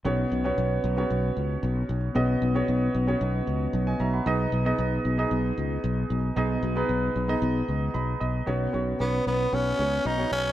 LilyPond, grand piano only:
<<
  \new Staff \with { instrumentName = "Grand piano" } { \time 4/4 \key b \major \tempo 4 = 114 << { r1 | r2. r16 <dis'' gis''>16 <e'' ais''>16 <fis'' b''>16~ | <fis'' b''>16 r2. r8. | r2. b''8 dis''8 |
r1 | } \\ { <b cis' fis' cis''>8. <b cis' fis' cis''>4 <b cis' fis' cis''>4.~ <b cis' fis' cis''>16 r8 | <b cis' fis' dis''>8. <b cis' fis' cis''>4 <b cis' fis' cis''>4.~ <b cis' fis' cis''>16 r8 | <b dis' gis' dis''>8. <b dis' gis' dis''>4 <b dis' gis' dis''>4.~ <b dis' gis' dis''>16 r8 | <b dis' gis' dis''>8. <b dis' gis' b'>4 <b dis' gis' dis''>4.~ <b dis' gis' dis''>16 r8 |
<b cis' fis' cis''>8 <b cis' fis' cis''>8 <b cis' fis' cis''>4 <b cis' fis' cis''>8 <b cis' fis' cis''>8. <b cis' fis' cis''>8. | } >> }
  \new Staff \with { instrumentName = "Grand piano" } { \clef bass \time 4/4 \key b \major b,4. r2 r8 | b,4. r2 r8 | b,4. r2 r8 | b,4. r2 r8 |
b,4. r2 r8 | }
>>